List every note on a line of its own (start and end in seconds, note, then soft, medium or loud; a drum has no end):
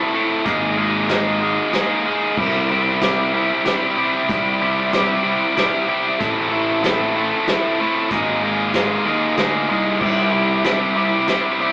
0.00 0.12 A3 loud
0.00 0.12 C4 loud
0.00 0.13 E4 loud
0.00 0.13 A4 loud
0.13 0.43 A3 loud
0.13 0.44 C4 medium
0.13 0.44 E4 loud
0.13 0.44 A4 loud
0.45 1.58 G#1 loud
0.45 0.76 G#3 loud
0.45 0.76 A#3 loud
0.45 0.77 D#4 loud
0.45 0.77 G#4 loud
0.45 kick loud
0.45 closed hi-hat medium
0.77 1.08 G#3 medium
0.77 1.08 A#3 loud
0.77 1.09 D#4 medium
0.77 1.09 G#4 loud
1.09 1.40 G#3 medium
1.09 1.40 A#3 medium
1.09 1.41 D#4 medium
1.09 1.41 G#4 medium
1.09 snare medium
1.09 closed hi-hat loud
1.41 1.71 G#3 medium
1.41 1.72 A#3 medium
1.41 1.73 D#4 loud
1.41 1.73 G#4 loud
1.73 2.04 G#3 loud
1.73 2.05 A#3 loud
1.73 2.05 D#4 loud
1.73 2.06 G#4 loud
1.73 snare medium
1.73 closed hi-hat medium
2.05 2.35 G#3 medium
2.05 2.36 A#3 medium
2.05 2.36 D#4 loud
2.05 2.36 G#4 loud
2.37 3.50 C2 loud
2.37 2.69 C3 loud
2.37 2.70 G3 medium
2.37 2.70 C4 loud
2.37 2.70 E4 loud
2.37 2.71 G4 loud
2.37 kick loud
2.37 crash loud
2.70 3.01 C3 medium
2.70 3.02 G3 medium
2.70 3.02 C4 loud
2.70 3.02 E4 loud
2.70 3.03 G4 loud
3.01 3.32 C3 medium
3.01 3.32 G3 medium
3.01 3.34 C4 loud
3.01 3.34 E4 medium
3.01 3.33 G4 medium
3.01 snare medium
3.01 closed hi-hat medium
3.33 3.64 C3 medium
3.33 3.64 G3 medium
3.33 3.65 C4 medium
3.33 3.66 E4 loud
3.33 3.65 G4 medium
3.65 3.95 C3 loud
3.65 3.96 G3 loud
3.65 3.97 C4 loud
3.65 3.98 E4 loud
3.65 3.97 G4 loud
3.65 snare medium
3.65 closed hi-hat medium
3.96 4.28 C3 medium
3.96 4.28 G3 medium
3.96 4.29 C4 loud
3.96 4.30 E4 loud
3.96 4.29 G4 loud
4.29 5.41 C2 loud
4.29 4.59 C3 loud
4.29 4.60 G3 loud
4.29 4.61 C4 loud
4.29 4.61 E4 loud
4.29 4.61 G4 loud
4.29 kick loud
4.29 closed hi-hat medium
4.60 4.91 C3 medium
4.60 4.91 G3 medium
4.60 4.93 C4 loud
4.60 4.93 E4 loud
4.60 4.93 G4 loud
4.92 5.22 C3 medium
4.92 5.22 G3 medium
4.92 5.23 C4 loud
4.92 5.23 E4 medium
4.92 5.23 G4 loud
4.92 snare loud
4.92 closed hi-hat medium
5.23 5.54 C3 medium
5.23 5.55 G3 loud
5.23 5.55 C4 loud
5.23 5.56 E4 loud
5.23 5.56 G4 loud
5.56 5.86 C3 loud
5.56 5.87 G3 loud
5.56 5.87 C4 loud
5.56 5.87 E4 loud
5.56 5.88 G4 loud
5.56 snare medium
5.56 closed hi-hat medium
5.87 6.18 C3 medium
5.87 6.18 G3 medium
5.87 6.18 C4 medium
5.87 6.18 E4 medium
5.87 6.19 G4 loud
6.19 7.32 A1 loud
6.19 6.50 A3 loud
6.19 6.51 C4 loud
6.19 6.51 E4 loud
6.19 6.52 A4 loud
6.19 kick loud
6.19 closed hi-hat medium
6.52 6.82 A3 loud
6.52 6.83 C4 medium
6.52 6.83 E4 loud
6.52 6.83 A4 medium
6.84 7.15 A3 medium
6.84 7.15 C4 medium
6.84 7.15 E4 loud
6.84 7.16 A4 medium
6.84 snare loud
6.84 closed hi-hat loud
7.16 7.46 A3 medium
7.16 7.47 C4 medium
7.16 7.47 E4 medium
7.16 7.47 A4 loud
7.47 7.79 A3 medium
7.47 7.79 C4 loud
7.47 7.80 E4 loud
7.47 7.80 A4 loud
7.47 snare loud
7.47 closed hi-hat medium
7.80 8.09 A3 medium
7.80 8.09 C4 medium
7.80 8.10 E4 loud
7.80 8.10 A4 loud
8.11 8.95 G#1 loud
8.11 8.41 G#3 loud
8.11 8.42 A#3 loud
8.11 8.42 D#4 loud
8.11 8.43 G#4 loud
8.11 kick loud
8.11 closed hi-hat medium
8.43 8.73 G#3 medium
8.43 8.74 A#3 loud
8.43 8.75 D#4 medium
8.43 8.74 G#4 loud
8.74 9.05 G#3 loud
8.74 9.06 A#3 medium
8.74 9.06 D#4 medium
8.74 9.06 G#4 medium
8.74 snare medium
8.74 closed hi-hat medium
9.05 9.34 D#2 medium
9.05 9.37 G#3 medium
9.05 9.37 A#3 medium
9.05 9.37 D#4 loud
9.05 9.38 G#4 medium
9.37 9.66 D2 medium
9.37 9.68 G#3 medium
9.37 9.68 A#3 loud
9.37 9.68 D#4 loud
9.37 9.69 G#4 loud
9.37 snare medium
9.37 closed hi-hat medium
9.69 9.98 C2 medium
9.69 9.99 G#3 medium
9.69 9.99 A#3 loud
9.69 9.99 D#4 loud
9.69 9.99 G#4 loud
10.00 11.13 C2 loud
10.00 10.31 C3 medium
10.00 10.31 G3 loud
10.00 10.32 C4 loud
10.00 10.32 E4 loud
10.00 10.33 G4 loud
10.00 kick loud
10.00 crash loud
10.31 10.63 C3 loud
10.31 10.64 G3 medium
10.31 10.64 C4 medium
10.31 10.64 E4 loud
10.31 10.65 G4 loud
10.64 10.94 C3 medium
10.64 10.95 G3 medium
10.64 10.96 C4 loud
10.64 10.96 E4 medium
10.64 10.96 G4 medium
10.64 snare medium
10.64 closed hi-hat medium
10.95 11.26 C3 medium
10.95 11.27 G3 loud
10.95 11.28 C4 medium
10.95 11.28 E4 medium
10.95 11.28 G4 loud
11.27 11.59 C3 medium
11.27 11.59 G3 loud
11.27 11.60 C4 loud
11.27 11.60 E4 loud
11.27 11.60 G4 loud
11.27 snare medium
11.27 closed hi-hat medium
11.60 11.72 C3 medium
11.60 11.72 G3 medium
11.60 11.72 C4 medium
11.60 11.72 E4 medium
11.60 11.72 G4 loud